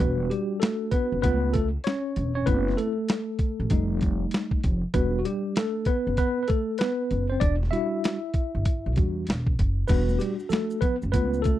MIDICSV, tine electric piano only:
0, 0, Header, 1, 2, 480
1, 0, Start_track
1, 0, Key_signature, 1, "minor"
1, 0, Tempo, 618557
1, 1916, Time_signature, 4, 2, 24, 8
1, 8996, End_track
2, 0, Start_track
2, 0, Title_t, "Tine electric piano"
2, 0, Program_c, 0, 4
2, 0, Note_on_c, 0, 55, 47
2, 0, Note_on_c, 0, 62, 46
2, 0, Note_on_c, 0, 71, 83
2, 1, Note_on_c, 0, 59, 62
2, 1, Note_on_c, 0, 66, 55
2, 222, Note_off_c, 0, 59, 0
2, 234, Note_on_c, 0, 67, 71
2, 236, Note_off_c, 0, 71, 0
2, 242, Note_off_c, 0, 55, 0
2, 251, Note_on_c, 0, 55, 56
2, 464, Note_on_c, 0, 69, 76
2, 467, Note_off_c, 0, 55, 0
2, 481, Note_on_c, 0, 57, 60
2, 482, Note_off_c, 0, 67, 0
2, 702, Note_off_c, 0, 57, 0
2, 710, Note_on_c, 0, 71, 88
2, 717, Note_off_c, 0, 69, 0
2, 726, Note_on_c, 0, 59, 67
2, 924, Note_off_c, 0, 62, 0
2, 927, Note_off_c, 0, 66, 0
2, 936, Note_off_c, 0, 71, 0
2, 945, Note_off_c, 0, 59, 0
2, 949, Note_on_c, 0, 71, 88
2, 956, Note_on_c, 0, 57, 54
2, 958, Note_on_c, 0, 59, 72
2, 967, Note_on_c, 0, 65, 58
2, 1185, Note_off_c, 0, 59, 0
2, 1189, Note_on_c, 0, 69, 84
2, 1196, Note_off_c, 0, 57, 0
2, 1200, Note_off_c, 0, 71, 0
2, 1205, Note_on_c, 0, 57, 63
2, 1299, Note_off_c, 0, 69, 0
2, 1306, Note_off_c, 0, 65, 0
2, 1311, Note_off_c, 0, 57, 0
2, 1429, Note_on_c, 0, 73, 89
2, 1448, Note_on_c, 0, 61, 71
2, 1808, Note_off_c, 0, 61, 0
2, 1816, Note_off_c, 0, 73, 0
2, 1825, Note_on_c, 0, 73, 84
2, 1838, Note_on_c, 0, 61, 67
2, 1908, Note_on_c, 0, 71, 95
2, 1910, Note_on_c, 0, 57, 50
2, 1915, Note_off_c, 0, 61, 0
2, 1915, Note_on_c, 0, 60, 46
2, 1917, Note_off_c, 0, 73, 0
2, 1920, Note_on_c, 0, 64, 56
2, 1921, Note_on_c, 0, 59, 71
2, 2142, Note_off_c, 0, 59, 0
2, 2152, Note_on_c, 0, 69, 77
2, 2154, Note_off_c, 0, 57, 0
2, 2160, Note_off_c, 0, 71, 0
2, 2163, Note_on_c, 0, 57, 60
2, 2260, Note_off_c, 0, 60, 0
2, 2263, Note_off_c, 0, 64, 0
2, 2871, Note_off_c, 0, 57, 0
2, 2874, Note_on_c, 0, 55, 53
2, 2880, Note_on_c, 0, 57, 49
2, 2885, Note_on_c, 0, 63, 57
2, 3083, Note_off_c, 0, 69, 0
2, 3564, Note_off_c, 0, 55, 0
2, 3567, Note_off_c, 0, 57, 0
2, 3570, Note_off_c, 0, 63, 0
2, 3830, Note_on_c, 0, 55, 52
2, 3833, Note_on_c, 0, 71, 78
2, 3835, Note_on_c, 0, 62, 46
2, 3837, Note_on_c, 0, 66, 57
2, 3840, Note_on_c, 0, 59, 65
2, 4016, Note_off_c, 0, 66, 0
2, 4021, Note_off_c, 0, 71, 0
2, 4025, Note_off_c, 0, 59, 0
2, 4025, Note_on_c, 0, 66, 56
2, 4070, Note_off_c, 0, 66, 0
2, 4072, Note_off_c, 0, 55, 0
2, 4076, Note_on_c, 0, 67, 74
2, 4082, Note_on_c, 0, 55, 59
2, 4299, Note_off_c, 0, 67, 0
2, 4302, Note_off_c, 0, 55, 0
2, 4320, Note_on_c, 0, 69, 77
2, 4332, Note_on_c, 0, 57, 59
2, 4525, Note_off_c, 0, 62, 0
2, 4548, Note_off_c, 0, 57, 0
2, 4552, Note_on_c, 0, 71, 85
2, 4564, Note_on_c, 0, 59, 65
2, 4565, Note_off_c, 0, 69, 0
2, 4784, Note_off_c, 0, 59, 0
2, 4787, Note_off_c, 0, 71, 0
2, 4796, Note_on_c, 0, 71, 83
2, 4806, Note_on_c, 0, 59, 66
2, 4978, Note_off_c, 0, 71, 0
2, 4988, Note_off_c, 0, 59, 0
2, 4988, Note_on_c, 0, 71, 59
2, 5029, Note_on_c, 0, 69, 79
2, 5031, Note_off_c, 0, 71, 0
2, 5043, Note_on_c, 0, 57, 60
2, 5255, Note_off_c, 0, 69, 0
2, 5263, Note_off_c, 0, 57, 0
2, 5266, Note_on_c, 0, 71, 82
2, 5277, Note_on_c, 0, 59, 66
2, 5637, Note_off_c, 0, 71, 0
2, 5643, Note_off_c, 0, 59, 0
2, 5661, Note_on_c, 0, 72, 82
2, 5680, Note_on_c, 0, 60, 67
2, 5744, Note_on_c, 0, 74, 97
2, 5746, Note_off_c, 0, 72, 0
2, 5756, Note_off_c, 0, 60, 0
2, 5761, Note_on_c, 0, 62, 75
2, 5854, Note_off_c, 0, 74, 0
2, 5868, Note_off_c, 0, 62, 0
2, 5980, Note_on_c, 0, 76, 96
2, 5988, Note_on_c, 0, 55, 51
2, 5991, Note_on_c, 0, 62, 45
2, 5995, Note_on_c, 0, 66, 57
2, 5996, Note_on_c, 0, 64, 73
2, 6336, Note_off_c, 0, 55, 0
2, 6338, Note_off_c, 0, 62, 0
2, 6340, Note_off_c, 0, 66, 0
2, 6917, Note_off_c, 0, 76, 0
2, 6925, Note_off_c, 0, 64, 0
2, 6958, Note_on_c, 0, 55, 46
2, 6960, Note_on_c, 0, 62, 41
2, 6962, Note_on_c, 0, 66, 49
2, 7173, Note_off_c, 0, 55, 0
2, 7174, Note_off_c, 0, 62, 0
2, 7175, Note_off_c, 0, 66, 0
2, 7664, Note_on_c, 0, 71, 85
2, 7671, Note_on_c, 0, 55, 51
2, 7678, Note_on_c, 0, 62, 46
2, 7682, Note_on_c, 0, 59, 67
2, 7683, Note_on_c, 0, 66, 58
2, 7902, Note_off_c, 0, 59, 0
2, 7905, Note_on_c, 0, 67, 71
2, 7915, Note_off_c, 0, 55, 0
2, 7917, Note_off_c, 0, 71, 0
2, 7924, Note_on_c, 0, 55, 58
2, 8016, Note_off_c, 0, 67, 0
2, 8030, Note_off_c, 0, 55, 0
2, 8142, Note_on_c, 0, 69, 76
2, 8161, Note_on_c, 0, 57, 63
2, 8366, Note_off_c, 0, 62, 0
2, 8368, Note_off_c, 0, 66, 0
2, 8382, Note_off_c, 0, 57, 0
2, 8387, Note_on_c, 0, 71, 87
2, 8396, Note_off_c, 0, 69, 0
2, 8406, Note_on_c, 0, 59, 70
2, 8497, Note_off_c, 0, 71, 0
2, 8512, Note_off_c, 0, 59, 0
2, 8628, Note_on_c, 0, 71, 88
2, 8636, Note_on_c, 0, 57, 48
2, 8643, Note_on_c, 0, 59, 73
2, 8645, Note_on_c, 0, 65, 55
2, 8855, Note_off_c, 0, 71, 0
2, 8863, Note_on_c, 0, 69, 87
2, 8867, Note_off_c, 0, 59, 0
2, 8876, Note_off_c, 0, 57, 0
2, 8885, Note_on_c, 0, 57, 66
2, 8985, Note_off_c, 0, 65, 0
2, 8996, Note_off_c, 0, 57, 0
2, 8996, Note_off_c, 0, 69, 0
2, 8996, End_track
0, 0, End_of_file